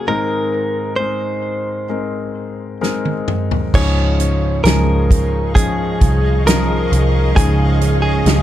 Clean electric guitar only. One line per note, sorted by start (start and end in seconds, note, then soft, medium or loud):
0.08 0.94 A#4 medium
0.96 2.77 C5 medium
3.75 4.63 C#5 loud
4.64 5.55 A#4 medium
5.55 6.47 G#4 medium
6.47 7.33 A#4 medium
7.36 8.01 G#4 loud
8.02 8.42 G#4 medium